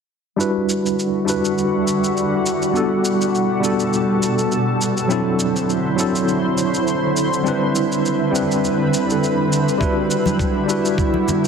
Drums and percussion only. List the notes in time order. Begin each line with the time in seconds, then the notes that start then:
0.40 shaker
0.69 shaker
0.86 shaker
0.99 shaker
1.28 shaker
1.45 shaker
1.58 shaker
1.88 shaker
2.04 shaker
2.17 shaker
2.46 shaker
2.62 shaker
2.76 shaker
3.05 shaker
3.21 shaker
3.35 shaker
3.64 shaker
3.80 shaker
3.93 shaker
4.23 shaker
4.38 shaker
4.52 shaker
4.81 shaker
4.97 shaker
5.10 shaker
5.39 shaker
5.56 shaker
5.70 shaker
5.99 shaker
6.15 shaker
6.28 shaker
6.58 shaker
6.74 shaker
6.87 shaker
7.17 shaker
7.33 shaker
7.46 shaker
7.75 shaker
7.92 shaker
8.05 shaker
8.35 shaker
8.51 shaker
8.64 shaker
8.94 shaker
9.10 shaker
9.23 shaker
9.53 shaker
9.68 shaker
9.81 kick, shaker
10.11 shaker
10.26 high conga, shaker
10.39 kick, shaker
10.69 shaker
10.85 shaker
10.98 kick, shaker
11.14 high conga
11.28 low conga, shaker
11.45 shaker